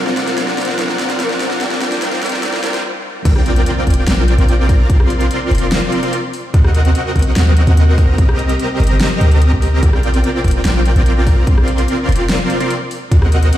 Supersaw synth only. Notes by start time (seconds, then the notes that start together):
Already playing: C4 F4 A#4 D5 F#5
0.37 C4 F4 A#4 D5 F#5
0.79 C4 F4 A#4 D5 F#5
1.20 C4 F4 A#4 D5 F#5
1.61 C4 F4 A#4 D5 G5
1.81 C4 F4 A#4 D5 G5
2.02 C4 F4 A#4 D5 G5
2.22 C4 F4 A#4 D5 G5
2.43 C4 F4 A#4 D5 G5
2.64 C4 F4 A#4 D5 G5
3.25 C4 F4 A#4 D5 G5
4.69 C4 F4 A#4 D5 A#5
4.90 C4 F4 A#4 D5 C6
6.03 C4 F4 A#4 D5 C6
6.54 C4 F#4 A#4 D#5 F#5
7.98 C4 F#4 A#4 D#5 A#5
8.18 C4 G4 A#4 D#5 A#5
9.32 C4 G4 A#4 D#5 A#5
9.83 C4 F4 A#4 D5 G5
11.27 C4 F4 A#4 D5 A#5
11.47 C4 F4 A#4 D5 C6
12.60 C4 F4 A#4 D5 C6
13.11 C4 F#4 A#4 D#5 F#5